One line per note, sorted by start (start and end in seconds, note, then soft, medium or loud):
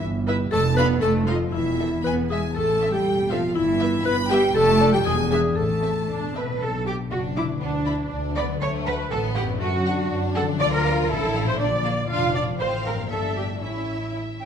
0.00 0.44 G1 loud
0.00 0.54 G2 medium
0.00 0.54 G3 medium
0.00 0.54 B4 medium
0.26 0.36 E4 medium
0.26 0.54 G4 medium
0.26 0.35 B4 medium
0.26 0.36 E5 medium
0.51 0.94 F1 loud
0.51 1.01 F2 medium
0.51 0.60 A3 loud
0.51 0.75 A4 loud
0.51 0.63 A4 loud
0.51 0.75 A5 loud
0.76 1.02 B3 loud
0.76 1.04 D4 medium
0.76 0.85 D4 medium
0.76 0.85 F4 medium
0.76 1.27 A4 medium
0.76 0.88 B4 loud
0.76 1.00 B4 loud
0.76 0.86 F5 medium
0.76 0.85 B5 loud
1.01 1.45 F1 medium
1.01 1.55 F2 medium
1.01 1.27 A3 loud
1.01 1.25 A4 loud
1.01 1.13 A4 loud
1.01 1.10 A5 loud
1.26 1.53 F3 medium
1.26 1.35 D#4 medium
1.26 1.55 D#4 medium
1.26 1.38 F4 loud
1.26 1.51 F4 medium
1.26 1.35 F4 medium
1.26 1.78 A4 medium
1.26 1.37 D#5 medium
1.26 1.35 F5 medium
1.52 1.96 E1 medium
1.52 2.03 E2 medium
1.52 2.04 E3 medium
1.52 2.03 E4 loud
1.52 2.00 E4 medium
1.52 2.03 E5 medium
1.78 1.87 C4 medium
1.78 2.29 E4 soft
1.78 1.87 A4 medium
1.78 2.07 A4 medium
1.78 1.87 E5 medium
2.04 2.47 E1 medium
2.04 2.57 E2 medium
2.04 2.29 B3 medium
2.04 2.16 B4 medium
2.04 2.28 B4 medium
2.04 2.14 G#5 medium
2.04 2.12 B5 medium
2.30 2.55 G#3 medium
2.30 2.38 B3 medium
2.30 4.29 E4 soft
2.30 2.38 G#4 medium
2.30 2.41 G#4 medium
2.30 2.54 G#4 medium
2.30 2.58 G#4 soft
2.30 2.40 E5 medium
2.30 2.55 G#5 medium
2.55 2.98 A1 medium
2.55 3.58 A2 medium
2.55 2.93 A3 medium
2.55 2.90 A4 medium
2.55 2.94 A4 loud
2.55 2.92 A5 medium
2.80 2.89 C4 medium
2.80 3.58 C4 medium
2.80 2.88 A4 medium
2.80 2.89 E5 medium
2.92 3.31 G3 medium
2.92 3.28 G4 medium
2.92 3.29 G4 medium
2.92 3.30 G5 medium
3.05 3.48 E1 medium
3.05 3.58 A4 medium
3.30 3.56 F3 medium
3.30 3.39 C4 medium
3.30 3.54 F4 loud
3.30 3.54 F4 medium
3.30 3.39 A4 medium
3.30 3.58 C5 medium
3.30 3.39 E5 medium
3.30 3.56 F5 medium
3.55 3.98 G1 medium
3.55 4.57 G2 medium
3.55 4.05 E3 medium
3.55 4.04 E4 loud
3.55 4.02 E4 medium
3.55 4.05 E5 loud
3.80 4.57 B3 medium
3.80 3.89 B3 medium
3.80 3.89 B4 medium
3.80 3.88 E5 medium
4.04 4.48 G1 loud
4.04 4.14 B3 loud
4.04 4.28 B4 loud
4.04 4.57 B4 medium
4.04 4.17 B4 loud
4.04 4.30 B5 loud
4.29 4.55 G3 loud
4.29 4.38 B3 medium
4.29 4.57 E4 medium
4.29 4.53 G4 loud
4.29 4.42 G4 loud
4.29 4.38 B4 medium
4.29 4.39 E5 medium
4.29 4.55 G5 loud
4.54 4.98 F1 loud
4.54 5.08 F2 loud
4.54 4.93 A3 loud
4.54 4.90 A4 loud
4.54 4.93 A4 loud
4.54 4.92 A5 loud
4.80 5.58 D4 medium
4.80 4.89 D4 medium
4.80 4.89 A4 medium
4.80 5.30 D5 medium
4.80 4.88 D5 medium
4.93 4.98 G3 medium
4.93 5.05 G4 medium
4.93 4.99 G4 loud
4.93 5.06 G5 medium
5.05 5.48 E1 loud
5.05 5.58 E2 medium
5.05 5.14 G#3 loud
5.05 5.29 G#4 loud
5.05 5.17 G#4 loud
5.05 5.30 G#5 loud
5.30 5.40 G#3 medium
5.30 5.40 D4 medium
5.30 6.62 E4 medium
5.30 5.55 G#4 medium
5.30 5.58 G#4 loud
5.30 5.40 B4 medium
5.30 5.59 D5 medium
5.30 5.40 E5 medium
5.30 5.39 G#5 medium
5.55 6.00 A1 medium
5.55 6.62 A2 medium
5.55 6.33 A3 medium
5.55 6.30 A4 medium
5.55 6.35 A4 medium
5.55 6.34 A5 medium
5.82 6.62 A3 soft
5.82 5.90 C4 medium
5.82 5.90 A4 medium
5.82 5.91 E5 medium
6.08 6.52 E1 medium
6.08 6.33 D4 medium
6.08 6.62 C5 soft
6.34 6.61 C4 medium
6.34 6.62 A4 soft
6.34 6.59 B4 medium
6.34 6.44 B4 medium
6.34 6.43 E5 soft
6.43 7.54 B2 medium
6.47 7.47 F#3 soft
6.52 7.52 D4 soft
6.56 7.56 B4 soft
6.61 7.03 B1 medium
6.61 6.86 A4 medium
6.61 6.70 A4 medium
6.86 6.94 G4 medium
6.86 6.95 G4 medium
6.86 6.95 D6 medium
7.11 7.53 F#1 medium
7.11 7.58 D4 medium
7.11 7.19 F#4 medium
7.11 7.20 F#4 medium
7.37 7.45 E4 medium
7.37 7.44 D6 medium
7.44 8.41 D3 medium
7.48 8.46 F#3 medium
7.53 8.50 D4 medium
7.57 8.61 B4 medium
7.61 8.03 D2 medium
7.61 7.69 B3 medium
7.61 8.10 D4 medium
7.86 7.94 E4 medium
7.86 7.94 B5 medium
8.10 8.53 D2 medium
8.10 8.35 D4 medium
8.36 8.61 B3 medium
8.36 8.44 D5 medium
8.36 8.45 D5 medium
8.36 8.44 B5 medium
8.43 9.53 D3 medium
8.47 9.45 F#3 medium
8.52 9.50 D4 medium
8.56 9.54 A4 medium
8.61 9.02 D2 medium
8.61 9.09 A3 medium
8.61 8.69 C#5 loud
8.61 8.70 C#5 medium
8.87 8.95 B4 loud
8.87 9.11 B4 medium
8.87 8.94 F#5 medium
9.10 9.52 A1 medium
9.10 9.59 B3 medium
9.10 9.19 A4 medium
9.10 9.19 A4 loud
9.36 9.44 G4 medium
9.36 9.44 F#5 medium
9.42 10.52 F#2 medium
9.47 10.55 F#3 medium
9.51 10.49 D4 medium
9.55 10.54 A4 medium
9.60 10.01 F#2 loud
9.60 9.68 A3 medium
9.60 10.09 F#4 loud
9.60 10.09 F#4 medium
9.85 10.58 D4 loud
9.85 9.93 F#5 medium
10.10 10.51 F#2 medium
10.35 10.43 A4 loud
10.35 10.43 A4 medium
10.35 10.43 F#5 medium
10.41 11.52 D3 medium
10.46 11.45 F3 medium
10.50 12.57 D4 medium
10.55 11.59 A4 medium
10.59 11.01 D2 medium
10.59 11.10 F4 loud
10.59 10.72 D5 loud
10.59 10.65 D5 loud
10.72 11.09 A#4 medium
10.72 11.02 A#4 loud
10.85 10.93 F5 medium
11.03 11.10 A#4 medium
11.09 11.51 A1 medium
11.09 11.59 E4 loud
11.09 11.47 A4 loud
11.09 11.47 A4 medium
11.35 11.43 F5 medium
11.41 12.53 A#2 medium
11.46 12.45 F3 medium
11.46 11.53 C5 loud
11.46 11.60 C5 medium
11.51 12.50 F4 medium
11.55 12.59 A#4 medium
11.59 12.01 A#1 medium
11.59 11.67 D4 medium
11.59 12.08 D5 loud
11.59 12.09 D5 medium
11.85 11.93 A#3 medium
11.85 11.93 F5 medium
12.10 12.51 F1 medium
12.10 12.59 D4 medium
12.10 12.34 F4 loud
12.10 12.34 F5 loud
12.35 12.43 D5 medium
12.35 12.43 F5 medium
12.42 13.04 A2 medium
12.46 13.06 F3 medium
12.51 13.08 F4 soft
12.55 13.09 C4 medium
12.55 13.10 C5 medium
12.55 13.07 F5 medium
12.60 13.07 A1 medium
12.60 12.85 C5 medium
12.60 12.68 C5 medium
12.85 12.93 A#4 medium
12.85 13.10 A#4 medium
12.92 13.55 G2 medium
12.97 13.57 A#3 soft
13.01 13.51 E4 soft
13.06 14.45 E5 soft
13.10 13.62 G1 medium
13.10 13.62 D4 medium
13.10 13.36 A4 medium
13.10 13.61 E5 medium
13.36 13.44 G4 medium
13.36 13.45 G4 medium
13.44 14.45 A2 soft
13.48 14.45 A3 soft
13.53 14.45 E4 soft
13.57 14.12 E4 medium
13.57 14.45 C#5 soft
13.62 14.45 A1 medium
13.62 14.09 C#4 medium
13.62 14.13 E4 medium
13.62 14.43 E5 medium
14.14 14.22 E4 medium
14.39 14.45 C#4 medium
14.39 14.45 G5 medium